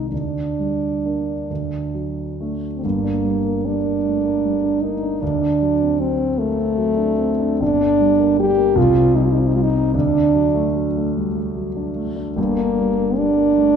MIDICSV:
0, 0, Header, 1, 3, 480
1, 0, Start_track
1, 0, Key_signature, -2, "minor"
1, 0, Tempo, 937500
1, 57, Time_signature, 6, 3, 24, 8
1, 537, Tempo, 895522
1, 1497, Tempo, 787402
1, 3897, Tempo, 835655
1, 4377, Tempo, 777202
1, 5817, Tempo, 807537
1, 8087, End_track
2, 0, Start_track
2, 0, Title_t, "French horn"
2, 0, Program_c, 0, 60
2, 49, Note_on_c, 0, 62, 63
2, 1237, Note_off_c, 0, 62, 0
2, 1459, Note_on_c, 0, 60, 44
2, 1499, Note_on_c, 0, 58, 72
2, 1508, Note_off_c, 0, 60, 0
2, 1994, Note_on_c, 0, 62, 72
2, 2003, Note_off_c, 0, 58, 0
2, 2701, Note_on_c, 0, 63, 75
2, 2710, Note_off_c, 0, 62, 0
2, 2941, Note_on_c, 0, 62, 82
2, 2950, Note_off_c, 0, 63, 0
2, 3425, Note_on_c, 0, 60, 74
2, 3435, Note_off_c, 0, 62, 0
2, 3660, Note_on_c, 0, 57, 87
2, 3669, Note_off_c, 0, 60, 0
2, 4379, Note_off_c, 0, 57, 0
2, 4385, Note_on_c, 0, 62, 101
2, 4851, Note_off_c, 0, 62, 0
2, 4862, Note_on_c, 0, 67, 97
2, 5095, Note_on_c, 0, 65, 101
2, 5104, Note_off_c, 0, 67, 0
2, 5330, Note_on_c, 0, 63, 79
2, 5340, Note_off_c, 0, 65, 0
2, 5387, Note_on_c, 0, 65, 75
2, 5397, Note_off_c, 0, 63, 0
2, 5433, Note_on_c, 0, 63, 75
2, 5442, Note_off_c, 0, 65, 0
2, 5480, Note_on_c, 0, 65, 69
2, 5490, Note_off_c, 0, 63, 0
2, 5526, Note_on_c, 0, 63, 73
2, 5535, Note_off_c, 0, 65, 0
2, 5575, Note_on_c, 0, 65, 76
2, 5585, Note_off_c, 0, 63, 0
2, 5621, Note_on_c, 0, 63, 90
2, 5631, Note_off_c, 0, 65, 0
2, 5813, Note_off_c, 0, 63, 0
2, 5817, Note_on_c, 0, 62, 86
2, 6523, Note_off_c, 0, 62, 0
2, 7262, Note_on_c, 0, 58, 89
2, 7740, Note_on_c, 0, 62, 97
2, 7749, Note_off_c, 0, 58, 0
2, 8087, Note_off_c, 0, 62, 0
2, 8087, End_track
3, 0, Start_track
3, 0, Title_t, "Grand piano"
3, 0, Program_c, 1, 0
3, 0, Control_c, 1, 64, 127
3, 0, Note_on_c, 1, 36, 45
3, 0, Note_on_c, 1, 51, 33
3, 0, Note_on_c, 1, 56, 34
3, 0, Note_on_c, 1, 63, 36
3, 61, Note_on_c, 1, 38, 43
3, 69, Control_c, 1, 64, 0
3, 70, Note_off_c, 1, 51, 0
3, 71, Note_off_c, 1, 36, 0
3, 71, Note_off_c, 1, 63, 0
3, 75, Note_off_c, 1, 56, 0
3, 183, Control_c, 1, 64, 127
3, 303, Note_on_c, 1, 55, 33
3, 539, Note_on_c, 1, 58, 32
3, 543, Note_on_c, 1, 62, 33
3, 683, Note_off_c, 1, 55, 0
3, 757, Note_off_c, 1, 58, 0
3, 758, Note_off_c, 1, 38, 0
3, 759, Note_off_c, 1, 62, 0
3, 782, Note_on_c, 1, 38, 44
3, 788, Control_c, 1, 64, 0
3, 883, Control_c, 1, 64, 127
3, 1017, Note_on_c, 1, 54, 34
3, 1263, Note_on_c, 1, 57, 34
3, 1270, Note_on_c, 1, 62, 36
3, 1405, Note_off_c, 1, 54, 0
3, 1475, Note_off_c, 1, 57, 0
3, 1477, Note_off_c, 1, 38, 0
3, 1478, Note_off_c, 1, 62, 0
3, 1493, Note_on_c, 1, 31, 47
3, 1501, Note_on_c, 1, 43, 52
3, 1507, Control_c, 1, 64, 0
3, 1621, Note_on_c, 1, 62, 38
3, 1622, Control_c, 1, 64, 127
3, 1745, Note_on_c, 1, 55, 38
3, 1818, Note_off_c, 1, 62, 0
3, 1870, Note_on_c, 1, 58, 39
3, 1941, Note_off_c, 1, 55, 0
3, 1995, Note_on_c, 1, 55, 41
3, 2064, Note_off_c, 1, 58, 0
3, 2108, Note_on_c, 1, 58, 40
3, 2186, Note_off_c, 1, 55, 0
3, 2234, Note_on_c, 1, 57, 35
3, 2302, Note_off_c, 1, 58, 0
3, 2352, Note_off_c, 1, 57, 0
3, 2353, Note_on_c, 1, 58, 43
3, 2474, Note_on_c, 1, 55, 38
3, 2541, Note_off_c, 1, 58, 0
3, 2593, Note_on_c, 1, 62, 42
3, 2661, Note_off_c, 1, 55, 0
3, 2715, Note_on_c, 1, 58, 45
3, 2780, Note_off_c, 1, 62, 0
3, 2831, Note_on_c, 1, 62, 40
3, 2901, Note_off_c, 1, 58, 0
3, 2918, Note_off_c, 1, 31, 0
3, 2923, Note_off_c, 1, 43, 0
3, 2947, Note_off_c, 1, 62, 0
3, 2951, Note_on_c, 1, 38, 59
3, 2956, Control_c, 1, 64, 0
3, 3067, Note_on_c, 1, 62, 42
3, 3070, Control_c, 1, 64, 127
3, 3191, Note_on_c, 1, 54, 42
3, 3256, Note_off_c, 1, 62, 0
3, 3309, Note_on_c, 1, 60, 41
3, 3376, Note_off_c, 1, 54, 0
3, 3419, Note_on_c, 1, 54, 45
3, 3493, Note_off_c, 1, 60, 0
3, 3531, Note_on_c, 1, 60, 47
3, 3606, Note_off_c, 1, 54, 0
3, 3657, Note_on_c, 1, 58, 43
3, 3722, Note_off_c, 1, 60, 0
3, 3774, Note_on_c, 1, 60, 47
3, 3775, Note_off_c, 1, 58, 0
3, 3894, Note_on_c, 1, 54, 45
3, 3968, Note_off_c, 1, 60, 0
3, 4006, Note_on_c, 1, 62, 46
3, 4087, Note_off_c, 1, 54, 0
3, 4130, Note_on_c, 1, 60, 54
3, 4205, Note_off_c, 1, 62, 0
3, 4252, Note_on_c, 1, 62, 46
3, 4326, Note_off_c, 1, 60, 0
3, 4356, Note_off_c, 1, 38, 0
3, 4373, Note_off_c, 1, 62, 0
3, 4374, Note_on_c, 1, 31, 64
3, 4386, Control_c, 1, 64, 0
3, 4490, Control_c, 1, 64, 127
3, 4494, Note_on_c, 1, 62, 53
3, 4618, Note_on_c, 1, 55, 50
3, 4689, Note_off_c, 1, 62, 0
3, 4733, Note_on_c, 1, 58, 50
3, 4808, Note_off_c, 1, 55, 0
3, 4852, Note_on_c, 1, 55, 55
3, 4923, Note_off_c, 1, 58, 0
3, 4971, Note_on_c, 1, 58, 52
3, 5042, Note_off_c, 1, 55, 0
3, 5068, Note_off_c, 1, 31, 0
3, 5085, Note_on_c, 1, 36, 73
3, 5090, Note_off_c, 1, 58, 0
3, 5102, Control_c, 1, 64, 0
3, 5182, Control_c, 1, 64, 127
3, 5206, Note_on_c, 1, 60, 56
3, 5331, Note_on_c, 1, 55, 48
3, 5400, Note_off_c, 1, 60, 0
3, 5454, Note_on_c, 1, 60, 48
3, 5523, Note_off_c, 1, 55, 0
3, 5572, Note_on_c, 1, 55, 52
3, 5646, Note_off_c, 1, 60, 0
3, 5692, Note_on_c, 1, 60, 48
3, 5767, Note_off_c, 1, 55, 0
3, 5791, Note_off_c, 1, 36, 0
3, 5815, Note_off_c, 1, 60, 0
3, 5815, Note_on_c, 1, 38, 67
3, 5828, Control_c, 1, 64, 0
3, 5937, Note_on_c, 1, 62, 46
3, 5942, Control_c, 1, 64, 127
3, 6055, Note_on_c, 1, 54, 46
3, 6127, Note_off_c, 1, 62, 0
3, 6174, Note_on_c, 1, 57, 48
3, 6247, Note_off_c, 1, 54, 0
3, 6297, Note_on_c, 1, 54, 47
3, 6368, Note_off_c, 1, 57, 0
3, 6425, Note_on_c, 1, 57, 45
3, 6490, Note_off_c, 1, 54, 0
3, 6546, Note_on_c, 1, 55, 39
3, 6613, Note_off_c, 1, 57, 0
3, 6661, Note_on_c, 1, 57, 41
3, 6662, Note_off_c, 1, 55, 0
3, 6777, Note_on_c, 1, 54, 41
3, 6851, Note_off_c, 1, 57, 0
3, 6898, Note_on_c, 1, 62, 40
3, 6970, Note_off_c, 1, 54, 0
3, 7013, Note_on_c, 1, 57, 44
3, 7093, Note_off_c, 1, 62, 0
3, 7136, Note_on_c, 1, 62, 43
3, 7210, Note_off_c, 1, 57, 0
3, 7237, Note_off_c, 1, 38, 0
3, 7256, Note_on_c, 1, 31, 59
3, 7259, Note_off_c, 1, 62, 0
3, 7262, Note_on_c, 1, 43, 62
3, 7272, Control_c, 1, 64, 0
3, 7361, Control_c, 1, 64, 127
3, 7383, Note_on_c, 1, 62, 47
3, 7510, Note_on_c, 1, 55, 44
3, 7572, Note_off_c, 1, 62, 0
3, 7619, Note_on_c, 1, 58, 46
3, 7695, Note_off_c, 1, 55, 0
3, 7738, Note_on_c, 1, 55, 51
3, 7808, Note_off_c, 1, 58, 0
3, 7860, Note_on_c, 1, 58, 45
3, 7928, Note_off_c, 1, 55, 0
3, 7975, Note_on_c, 1, 57, 44
3, 8049, Note_off_c, 1, 58, 0
3, 8087, Note_off_c, 1, 31, 0
3, 8087, Note_off_c, 1, 43, 0
3, 8087, Note_off_c, 1, 57, 0
3, 8087, End_track
0, 0, End_of_file